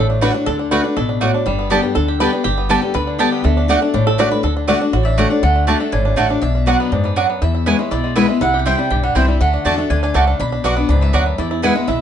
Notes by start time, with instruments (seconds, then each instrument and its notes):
Already playing: upright bass A1, steel-string acoustic guitar A2, five-string banjo A3 D4
0.10 five-string banjo D4
0.21 steel-string acoustic guitar D3 A3 D4 F#4, mandolin A3 F#4 D5 F#5, five-string banjo B4
0.34 five-string banjo D4, steel-string acoustic guitar D4 F#4
0.46 upright bass D2, steel-string acoustic guitar D3, five-string banjo A4
0.59 five-string banjo D4
0.71 steel-string acoustic guitar D3 A3 D4 F#4, mandolin A3 F#4 D5 F#5, five-string banjo B4
0.83 five-string banjo D4, steel-string acoustic guitar D4 F#4
0.96 upright bass A1, steel-string acoustic guitar B2, five-string banjo A4
1.09 five-string banjo D4
1.21 steel-string acoustic guitar A2, mandolin A3 F#4 D5 F#5, five-string banjo F#4
1.34 five-string banjo D4
1.46 upright bass G1, steel-string acoustic guitar G2, five-string banjo G3
1.59 five-string banjo B3
1.70 steel-string acoustic guitar D3 G3 B3 G4, five-string banjo G3, mandolin B3 G4 D5 A5
1.82 steel-string acoustic guitar B3 G4, five-string banjo D4
1.95 upright bass D2, steel-string acoustic guitar D3, five-string banjo A4
2.08 five-string banjo G4
2.20 steel-string acoustic guitar D3 G3 B3 G4, mandolin B3 G4 D5 A5, five-string banjo B4
2.32 steel-string acoustic guitar B3 G4, five-string banjo D4
2.44 upright bass G1, steel-string acoustic guitar G2, five-string banjo G4
2.58 five-string banjo B3
2.69 steel-string acoustic guitar D3 G3 B3 G4, mandolin B3 G4 D5 A5, five-string banjo A4
2.81 five-string banjo D3, steel-string acoustic guitar B3 G4
2.94 upright bass D2, steel-string acoustic guitar D3, five-string banjo B4
3.07 five-string banjo D4
3.19 steel-string acoustic guitar D3 G3 B3 G4, mandolin B3 G4 D5 A5, five-string banjo G4
3.32 five-string banjo B3
3.44 upright bass D2, steel-string acoustic guitar D3, five-string banjo A3
3.57 five-string banjo D4
3.68 steel-string acoustic guitar D3 A3 D4 F#4, mandolin A3 F#4 D5 F#5, five-string banjo A3
3.80 steel-string acoustic guitar D4 F#4, five-string banjo D4
3.94 upright bass A1, steel-string acoustic guitar A2, five-string banjo D4
4.07 five-string banjo A4
4.18 steel-string acoustic guitar D3 A3 D4 F#4, mandolin A3 F#4 D5 F#5, five-string banjo D5
4.30 steel-string acoustic guitar D4 F#4, five-string banjo B4
4.43 upright bass D2, steel-string acoustic guitar D3, five-string banjo A4
4.57 five-string banjo D4
4.68 steel-string acoustic guitar D3 A3 D4 F#4, mandolin A3 F#4 D5 F#5, five-string banjo D5
4.80 five-string banjo D4, steel-string acoustic guitar D4 F#4
4.93 upright bass A1, steel-string acoustic guitar A2, five-string banjo F#4
5.03 five-string banjo D4, mandolin D5 E5
5.17 steel-string acoustic guitar D3 A3 D4 F#4, mandolin A3 F#4 D5 F#5, five-string banjo D4
5.30 five-string banjo D4, steel-string acoustic guitar D4 F#4
5.43 upright bass D2, steel-string acoustic guitar D3, five-string banjo A3, mandolin F#5
5.56 five-string banjo D4
5.67 steel-string acoustic guitar D3 A3 D4 F#4, mandolin A3 F#4 D5 A5, five-string banjo D4
5.80 five-string banjo A3, steel-string acoustic guitar D4 F#4
5.92 upright bass G#1, steel-string acoustic guitar A2, five-string banjo D4, mandolin G#5
6.05 five-string banjo D4
6.16 upright bass A1, steel-string acoustic guitar D3 A3 D4 F#4, mandolin A3 F#4 D5 F#5 A5, five-string banjo A3
6.29 five-string banjo D4, steel-string acoustic guitar D4 F#4
6.42 upright bass B1, steel-string acoustic guitar B2, five-string banjo D4, mandolin E5
6.55 five-string banjo D4
6.66 steel-string acoustic guitar F#3 B3 D4 F#4, mandolin B3 F#4 D5 F#5, five-string banjo D4
6.80 five-string banjo B3
6.92 upright bass F#2, steel-string acoustic guitar G#2, five-string banjo D4
7.04 five-string banjo B3, mandolin D5
7.16 steel-string acoustic guitar F#2, mandolin B3 F#4 D5 F#5, five-string banjo D4
7.30 five-string banjo B3
7.42 steel-string acoustic guitar E2, upright bass E2, five-string banjo E4, mandolin E5
7.55 five-string banjo E4
7.66 steel-string acoustic guitar E3 G#3 B3 E4, mandolin B3 E4 B4 C#5 G#5, five-string banjo E4
7.79 five-string banjo G#3, steel-string acoustic guitar B3 E4
7.91 upright bass B1, steel-string acoustic guitar B2, five-string banjo E4, mandolin D5
8.04 five-string banjo G#3
8.16 steel-string acoustic guitar E3 G#3 B3 E4, mandolin B3 E4 B4 E5 G#5, five-string banjo E4
8.29 five-string banjo G#3, steel-string acoustic guitar B3 E4
8.41 upright bass C2, steel-string acoustic guitar C3, five-string banjo E4, mandolin F#5
8.54 five-string banjo G4
8.59 mandolin F#5
8.66 steel-string acoustic guitar E3 G3 C4 E4, mandolin C4 E4 C5 G5, five-string banjo E4
8.77 five-string banjo G3, steel-string acoustic guitar C4 E4
8.90 upright bass B1, steel-string acoustic guitar G2, five-string banjo G4
9.03 five-string banjo G3, mandolin F#5
9.15 upright bass C2, steel-string acoustic guitar E3 G3 C4 E4, mandolin C4 E4 C5 E5 G5, five-string banjo E4
9.28 five-string banjo G3, steel-string acoustic guitar C4 E4
9.40 upright bass D2, steel-string acoustic guitar D3, five-string banjo A3, mandolin F#5
9.54 five-string banjo D4
9.65 upright bass E2, steel-string acoustic guitar D3 A3 D4 F#4, mandolin A3 F#4 D5 A5, five-string banjo D4
9.78 five-string banjo A3, steel-string acoustic guitar D4 F#4
9.90 upright bass D2, steel-string acoustic guitar D3, five-string banjo D4, mandolin G#5
10.03 five-string banjo D4, mandolin G#5
10.14 upright bass C#2, steel-string acoustic guitar C#3, mandolin A3 F#4 D5 F#5 A5, five-string banjo A3
10.27 five-string banjo D4
10.40 upright bass B1, steel-string acoustic guitar B2, five-string banjo D4, mandolin B5
10.52 five-string banjo D4
10.64 upright bass B1, steel-string acoustic guitar F#3 B3 D4 F#4, mandolin B3 F#4 D5 F#5 D6, five-string banjo D4
10.77 five-string banjo B3, steel-string acoustic guitar D4 F#4
10.89 upright bass C#2, steel-string acoustic guitar G#2, five-string banjo D4, mandolin B5
11.01 five-string banjo B3, mandolin E5
11.13 upright bass D2, steel-string acoustic guitar F#2, mandolin B3 F#4 D5 F#5, five-string banjo D4
11.26 five-string banjo B3
11.38 steel-string acoustic guitar E2, upright bass E2, five-string banjo E4, mandolin D5
11.51 five-string banjo E4
11.62 steel-string acoustic guitar E3 G#3 B3 E4, mandolin B3 E4 B4 F#5 G#5, five-string banjo E4
11.76 five-string banjo G#3, steel-string acoustic guitar B3 E4
11.88 upright bass B1, steel-string acoustic guitar B2, five-string banjo E4, mandolin E5